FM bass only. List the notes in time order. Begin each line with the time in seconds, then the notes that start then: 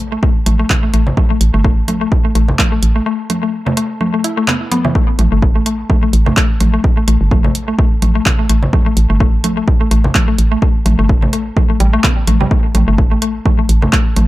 0.00 A1
0.46 A1
0.94 A1
1.41 A1
1.54 G1
1.88 A1
2.35 A1
2.83 A1
5.19 A1
5.32 G1
5.66 A1
6.13 A1
6.60 A1
7.08 A1
7.21 G1
7.55 A1
8.02 A1
8.49 A1
8.97 A1
9.10 G1
9.44 A1
9.91 A1
10.38 A1
10.86 A1
10.99 G1
11.33 A1
11.80 A1
12.27 A1
12.75 A1
12.88 G1
13.22 A1
13.69 A1
14.16 A1